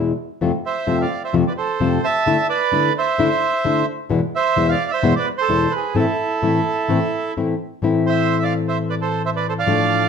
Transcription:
Already playing: E2 B2 E3 G#3 B3 E4
0.41 F2 C3 F3 A3 C4 F4
0.66 C5 E5
0.87 F2 C3 F3 A3 C4 F4
1.01 D5 F5
1.24 C5 E5
1.33 F2 C3 F3 A3 C4 F4
1.47 B4 D5
1.57 A4 C5
1.80 F2 C3 F3 A3 C4 F4
2.04 E5 A5
2.26 D3 A3 D4 E4
2.49 B4 D5
2.72 D3 A3 D4 E4
2.98 C5 E5
3.19 D3 A3 D4 E4
3.65 D3 A3 D4 E4
4.09 E2 B2 E3 G#3 B3 E4
4.36 C5 E5
4.56 E2 B2 E3 G#3 B3 E4
4.69 D5 F5
4.91 C5 E5
5.03 E2 B2 E3 G#3 B3 E4
5.16 B4 D5
5.38 A4 C5
5.49 E2 B2 E3 G#3 B3 E4
5.71 B4
5.76 G#4
5.95 A2 E3 A3 C4 E4 A4
5.99 E4
6.42 A2 E3 A3 C4 E4
6.89 A2 E3 A3 C4 E4
7.37 A2 E3 A3 C4 E4
7.82 A2 E3 A3 C4 E4
8.06 C5 E5
8.43 D5 F5
8.68 C5 E5
8.90 B4 D5
9.02 A4 C5
9.26 C5 E5
9.36 B4 D5
9.49 A4 C5
9.59 D5 F5
9.67 A2 F3 A3 D4

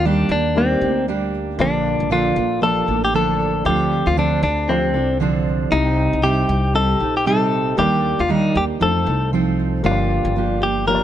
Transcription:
Already playing: D#2 A#3 D#4 G4 D5
0.05 D#3 G3 A#3 D4 G4
0.29 D#2 A#3 D4 G4
0.55 G3 A#3 C4 D4 D#4 G4 D5
0.81 D2 A#3 D4 G4
1.08 G3 A#3 D4 G4
1.58 A#1 A#2 D3 F3 A#3 D4 F4 A4 D5
2.00 A#1
2.10 A#2 D3 F3 A#3 D4 F4 A4
2.36 A#1 F3 A#3 D4 A4
2.61 F3 A#3 D4 F4 A4 D5
2.87 A1 F3 A#3 D4 A4
3.05 G4
3.14 D3 F3 A#3 D4 A4
3.64 D2 D3 F3 C4 D4 F4 G4 A4 D5
4.06 D2 F4
4.16 D3 F3 C4 D4 A4
4.43 D2 C4 D4 A4
4.68 F3 C4 D4 F4 A4 D5
4.94 C2 C4 D4 A4
5.20 D3 F3 C4 D4 A4
5.71 C2 C3 G3 C4 D#4 G4 D#5
6.13 C2
6.23 C3 G3 C4 D#4 G4
6.48 C2 C4 D#4 G4
6.74 G3 C4 D#4 G4 A4 D#5
7.00 A#1 C4 D#4 G4
7.17 G4
7.26 C3 G3 C4 D#4 G4 A4
7.77 D#2 D#3 G3 A#3 D4 D#4 G4 D5
8.19 D#2 F4
8.28 D#3 G3 A#3 D4 D#4 G4
8.54 D#2 A#3 D4 G4
8.80 F2 F3 A3 C4 D#4 F4 A4 C5
9.06 C2 C4 D#4 A4
9.33 F3 C4 D#4 A4
9.83 G1 G2 D3 F3 A#3 D4 F4 G4 C#5
9.91 D5
10.25 G1
10.36 F3 A#3 D4 G4
10.61 F3 A#3 D4 G4
10.86 F3 A#3 D4 F4 G4 A#4 C#5
10.95 D5

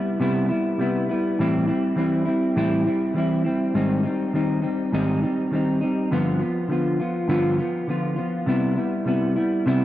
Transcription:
Already playing: G3 B3 E4
0.20 C3 G3 B3 E4
0.49 G3 B3 E4
0.78 C3 G3 B3 E4
1.09 G3 B3 E4
1.39 A2 E3 G3 C4 E4
1.67 G3 C4 E4
1.96 E3 G3 C4 E4
2.25 G3 C4 E4
2.56 A2 E3 G3 C4 E4
2.85 G3 C4 E4
3.14 E3 G3 C4 E4
3.45 G3 C4 E4
3.74 G#2 D#3 G3 C4 D#4
4.03 G3 C4 D#4
4.33 D#3 G3 C4 D#4
4.62 G3 C4 D#4
4.92 G#2 D#3 G3 C4 D#4
5.22 G3 C4 D#4
5.51 D#3 G3 C4 D#4
5.81 G3 C4 D#4
6.11 G2 D3 F3 B3 F4
6.39 F3 B3 F4
6.68 D3 F3 B3 F4
7.00 F3 B3 F4
7.28 G2 D3 F3 B3 F4
7.58 F3 B3 F4
7.87 D3 F3 B3 F4
8.16 F3 B3 F4
8.46 C3 G3 B3 E4
8.75 G3 B3 E4
9.05 C3 G3 B3 E4
9.36 G3 B3 E4
9.66 C3 G3 B3 E4

